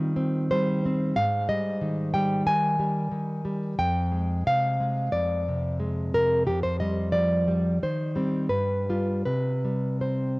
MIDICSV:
0, 0, Header, 1, 2, 480
1, 0, Start_track
1, 0, Key_signature, -3, "minor"
1, 0, Tempo, 713436
1, 347, Tempo, 653595
1, 823, Time_signature, 4, 2, 24, 8
1, 2747, Tempo, 671892
1, 5627, Tempo, 688863
1, 6107, Tempo, 759494
1, 7303, End_track
2, 0, Start_track
2, 0, Title_t, "Nylon-string guitar"
2, 0, Program_c, 0, 24
2, 0, Note_on_c, 0, 51, 53
2, 0, Note_on_c, 0, 55, 47
2, 0, Note_on_c, 0, 60, 46
2, 0, Note_on_c, 0, 65, 84
2, 102, Note_off_c, 0, 60, 0
2, 111, Note_on_c, 0, 60, 49
2, 319, Note_off_c, 0, 65, 0
2, 339, Note_off_c, 0, 55, 0
2, 343, Note_on_c, 0, 72, 78
2, 347, Note_on_c, 0, 55, 46
2, 587, Note_off_c, 0, 60, 0
2, 596, Note_on_c, 0, 60, 51
2, 793, Note_off_c, 0, 51, 0
2, 802, Note_off_c, 0, 72, 0
2, 821, Note_on_c, 0, 77, 97
2, 823, Note_off_c, 0, 55, 0
2, 823, Note_on_c, 0, 44, 59
2, 826, Note_off_c, 0, 60, 0
2, 1051, Note_off_c, 0, 77, 0
2, 1060, Note_on_c, 0, 55, 50
2, 1061, Note_on_c, 0, 75, 67
2, 1300, Note_on_c, 0, 51, 47
2, 1527, Note_off_c, 0, 75, 0
2, 1535, Note_off_c, 0, 55, 0
2, 1537, Note_on_c, 0, 79, 78
2, 1544, Note_on_c, 0, 55, 47
2, 1759, Note_off_c, 0, 44, 0
2, 1768, Note_off_c, 0, 51, 0
2, 1772, Note_off_c, 0, 79, 0
2, 1777, Note_on_c, 0, 51, 49
2, 1779, Note_on_c, 0, 80, 84
2, 2009, Note_off_c, 0, 55, 0
2, 2018, Note_on_c, 0, 55, 50
2, 2247, Note_off_c, 0, 51, 0
2, 2256, Note_on_c, 0, 51, 45
2, 2492, Note_off_c, 0, 55, 0
2, 2500, Note_on_c, 0, 55, 48
2, 2713, Note_off_c, 0, 80, 0
2, 2744, Note_off_c, 0, 51, 0
2, 2746, Note_off_c, 0, 55, 0
2, 2749, Note_on_c, 0, 41, 60
2, 2750, Note_on_c, 0, 79, 84
2, 2986, Note_on_c, 0, 56, 43
2, 3207, Note_off_c, 0, 79, 0
2, 3232, Note_off_c, 0, 41, 0
2, 3235, Note_on_c, 0, 48, 43
2, 3237, Note_on_c, 0, 77, 80
2, 3465, Note_off_c, 0, 56, 0
2, 3474, Note_on_c, 0, 56, 45
2, 3692, Note_off_c, 0, 77, 0
2, 3703, Note_on_c, 0, 74, 72
2, 3705, Note_off_c, 0, 48, 0
2, 3708, Note_on_c, 0, 41, 45
2, 3959, Note_off_c, 0, 56, 0
2, 3962, Note_on_c, 0, 48, 46
2, 4167, Note_off_c, 0, 74, 0
2, 4185, Note_on_c, 0, 56, 43
2, 4425, Note_off_c, 0, 48, 0
2, 4433, Note_on_c, 0, 48, 46
2, 4433, Note_on_c, 0, 70, 72
2, 4643, Note_off_c, 0, 41, 0
2, 4662, Note_off_c, 0, 70, 0
2, 4664, Note_on_c, 0, 67, 72
2, 4668, Note_on_c, 0, 41, 54
2, 4669, Note_off_c, 0, 56, 0
2, 4672, Note_off_c, 0, 48, 0
2, 4779, Note_off_c, 0, 67, 0
2, 4781, Note_on_c, 0, 72, 64
2, 4898, Note_off_c, 0, 72, 0
2, 4901, Note_on_c, 0, 75, 71
2, 4907, Note_on_c, 0, 55, 38
2, 5129, Note_off_c, 0, 75, 0
2, 5132, Note_on_c, 0, 53, 39
2, 5132, Note_on_c, 0, 74, 63
2, 5378, Note_off_c, 0, 55, 0
2, 5386, Note_on_c, 0, 55, 36
2, 5599, Note_off_c, 0, 41, 0
2, 5600, Note_off_c, 0, 74, 0
2, 5620, Note_off_c, 0, 53, 0
2, 5627, Note_off_c, 0, 55, 0
2, 5635, Note_on_c, 0, 51, 47
2, 5638, Note_on_c, 0, 72, 64
2, 5864, Note_on_c, 0, 55, 35
2, 5871, Note_on_c, 0, 60, 37
2, 6083, Note_off_c, 0, 55, 0
2, 6087, Note_off_c, 0, 60, 0
2, 6094, Note_off_c, 0, 72, 0
2, 6097, Note_off_c, 0, 51, 0
2, 6100, Note_on_c, 0, 71, 53
2, 6105, Note_on_c, 0, 43, 42
2, 6354, Note_on_c, 0, 55, 33
2, 6356, Note_on_c, 0, 65, 36
2, 6555, Note_off_c, 0, 71, 0
2, 6562, Note_off_c, 0, 43, 0
2, 6562, Note_off_c, 0, 55, 0
2, 6564, Note_off_c, 0, 65, 0
2, 6581, Note_on_c, 0, 71, 62
2, 6584, Note_on_c, 0, 48, 40
2, 6828, Note_on_c, 0, 55, 31
2, 7047, Note_off_c, 0, 71, 0
2, 7060, Note_on_c, 0, 72, 46
2, 7065, Note_on_c, 0, 60, 32
2, 7300, Note_off_c, 0, 55, 0
2, 7303, Note_off_c, 0, 48, 0
2, 7303, Note_off_c, 0, 60, 0
2, 7303, Note_off_c, 0, 72, 0
2, 7303, End_track
0, 0, End_of_file